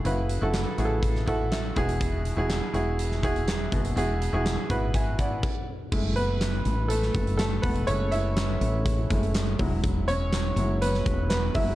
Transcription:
<<
  \new Staff \with { instrumentName = "Upright piano" } { \time 4/4 \key fis \minor \tempo 4 = 123 << { r2. e''4 | r1 | r2 <e'' gis''>8 <d'' fis''>4 r8 | r8 <b b'>4. <a a'>4 <a a'>8 <b b'>8 |
<cis' cis''>8 <e' e''>2. r8 | r8 <cis' cis''>4. <b b'>4 <b b'>8 e''8 | } \\ { <e' fis' b'>8 r16 <e' fis' a'>8 r16 <e' fis' gis' a'>8. r16 <e' fis' a'>4 <e' fis' gis'>8~ | <e' fis' gis'>8 r16 <e' fis' gis'>8 r16 <e' fis' gis'>8. r16 <e' fis' gis'>4 r8 | <e' fis' gis'>8 r16 <e' fis' gis'>8 r16 <e' fis' b'>8. r4. r16 | r1 |
r1 | r1 | } >> }
  \new Staff \with { instrumentName = "Upright piano" } { \clef bass \time 4/4 \key fis \minor cis4. r2 b,8~ | b,4 r2 r8 b,8~ | b,4 r2. | <gis a e'>8 r2. r8 |
<gis a e'>2~ <gis a e'>8 <gis a e'>8 r8 <fis gis e'>8~ | <fis gis e'>4 r8 <fis gis e'>8 r4. <fis gis e'>8 | }
  \new Staff \with { instrumentName = "Fretless electric bass" } { \clef bass \time 4/4 \key fis \minor fis,,8. fis,,8 r16 a,,2 e,,8~ | e,,8. e,,8 r16 e,,2 fis,,8 | e,,8. e,,8 r16 gis,,4. r4 | fis,,4. a,,4 fis,,4 e,,8 |
fis,,4. a,,4 fis,,4 e,,8~ | e,,4. fis,,4 e,,4 fis,,8 | }
  \new DrumStaff \with { instrumentName = "Drums" } \drummode { \time 4/4 hh8 hh8 <hc hh sn>8 hh8 <hh bd>16 sn16 <hh bd>8 <hc hh sn>8 <hh bd>16 hh16 | <hh bd>8 hh8 <hc hh sn>8 hh8 hh16 sn16 <hh bd>16 hh16 <hc hh sn>8 <hh bd>16 hh16 | hh8 hh8 <hc hh sn>8 <hh bd>8 <hh bd>8 <hh bd>8 <cymc bd>4 | <cymc bd>8 hh8 <hc hh sn>8 hh8 hh16 sn16 <hh bd>16 hh16 <hc hh sn>8 <hho bd>16 hh16 |
hh8 hh8 <hc hh sn>8 hh8 <hh bd>8 <hh bd>16 hh16 <hc hh sn>8 <hho bd>8 | <hh bd>8 hh8 <hc hh sn>8 hh8 hh16 sn16 <hh bd>8 <hc hh sn>8 <hho bd>8 | }
>>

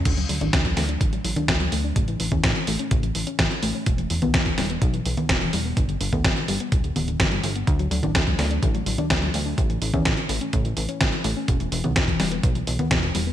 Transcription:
<<
  \new Staff \with { instrumentName = "Synth arpeggio sound" } { \clef bass \time 4/4 \key d \major \tempo 4 = 126 d16 fis16 fis16 d'16 d16 fis16 a16 d'16 d16 fis16 fis16 d'16 d16 fis16 a16 d'16 | cis16 e16 e16 cis'16 cis16 e16 a16 cis'16 cis16 e16 e16 cis'16 cis16 e16 a16 cis'16 | b,16 e16 e16 b16 b,16 e16 g16 b16 b,16 e16 e16 b16 b,16 e16 g16 b16 | b,16 d16 d16 b16 b,16 d16 g16 b16 b,16 d16 b16 d16 d16 g16 g16 b16 |
d16 fis16 fis16 d'16 d16 fis16 a16 d'16 d16 fis16 fis16 d'16 d16 fis16 a16 d'16 | cis16 e16 e16 cis'16 cis16 e16 a16 cis'16 cis16 e16 e16 cis'16 cis16 e16 a16 cis'16 | b,16 e16 e16 b16 b,16 e16 g16 b16 b,16 e16 e16 b16 b,16 e16 g16 b16 | }
  \new Staff \with { instrumentName = "Analog synth bass" } { \clef bass \time 4/4 \key d \major d,8 d,16 a,,16 d,8 d,8 a,,8 a,,16 r16 d,8 d,8 | a,,8 a,,16 e,16 a,,16 r16 a,,16 r16 a,,8 a,,16 r16 a,,16 r16 a,,16 r16 | e,,8 e,,16 b,,16 e,,8 e,,8 b,,8 b,,16 r16 e,,8 e,,8 | g,,8 g,,16 d,16 g,,16 r16 g,,16 r16 d,,8 d,,8 g,,8 g,,8 |
d,8 d,16 a,,16 d,8 d,8 a,,8 a,,16 r16 d,8 d,8 | a,,8 a,,16 e,16 a,,16 r16 a,,16 r16 a,,8 a,,16 r16 a,,16 r16 a,,16 r16 | e,,8 e,,16 b,,16 e,,8 e,,8 b,,8 b,,16 r16 e,,8 e,,8 | }
  \new DrumStaff \with { instrumentName = "Drums" } \drummode { \time 4/4 <cymc hh bd>16 hh16 hho16 <cgho hh>16 <hh bd sn>16 <hh bd>16 <hho sn>16 hh16 <hh bd>16 hh16 hho16 <cgho hh>16 <hh bd sn>16 hh16 hho8 | <hh bd>16 hh16 hho16 <cgho hh bd>16 <hh bd sn>16 hh16 hho16 hh16 <hh bd>16 hh16 hho16 hh16 <hh bd sn>16 hh16 hho8 | <hh bd>16 hh16 hho16 <cgho hh>16 <hh bd sn>16 <hh bd>16 <hho sn>16 hh16 <hh bd>16 hh16 hho16 <cgho hh>16 <hh bd sn>16 hh16 hho8 | <hh bd>16 hh16 hho16 <cgho hh bd>16 <hh bd sn>16 hh16 hho16 hh16 <hh bd>16 hh16 <cgho hho>16 hh16 <hh bd sn>16 hh16 hho16 hh16 |
<hh bd>16 hh16 hho16 <cgho hh>16 <hh bd sn>16 <hh bd>16 <hho sn>16 hh16 <hh bd>16 hh16 hho16 <cgho hh>16 <hh bd sn>16 hh16 hho8 | <hh bd>16 hh16 hho16 <cgho hh bd>16 <hh bd sn>16 hh16 hho16 hh16 <hh bd>16 hh16 hho16 hh16 <hh bd sn>16 hh16 hho8 | <hh bd>16 hh16 hho16 <cgho hh>16 <hh bd sn>16 <hh bd>16 <hho sn>16 hh16 <hh bd>16 hh16 hho16 <cgho hh>16 <hh bd sn>16 hh16 hho8 | }
>>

